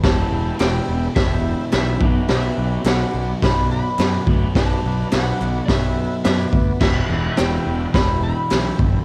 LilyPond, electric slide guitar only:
\new Staff \with { instrumentName = "Electric slide guitar" } { \time 4/4 \key e \minor \tempo 4 = 106 a''4 g''4 e''4 e''4 | e''4 fis''4 b''8 b''4. | a''4 fis''8.~ fis''32 d''32 e''4 e''4 | e''8.~ e''32 e''32 g''4 b''8 b''4. | }